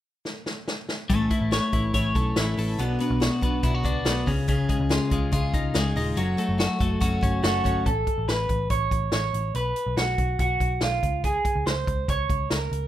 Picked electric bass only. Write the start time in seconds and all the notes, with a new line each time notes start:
1.10 A1
1.41 A1
1.73 A1
1.94 A1
2.15 B1
2.37 A1
2.58 A1
2.79 B1
3.10 B1
3.42 B1
3.63 B1
3.85 C#2
4.06 B1
4.27 C#2
4.80 C#2
5.12 C#2
5.32 C#2
5.54 C#2
5.75 C#2
5.96 D#1
6.17 F#1
6.49 F#1
6.80 F#1
7.01 F#1
7.23 G1
7.43 F#1
7.65 G1
7.86 A1
8.18 A1
8.28 A1
8.49 A1
8.70 A1
8.91 A1
9.13 A1
9.34 A1
9.55 B1
9.86 B1
9.97 B1
10.18 B1
10.39 B1
10.60 B1
10.82 B1
11.03 C#2
11.55 C#2
11.66 C#2
11.87 C#2
12.08 C#2
12.30 C#2
12.51 C#2
12.71 C#2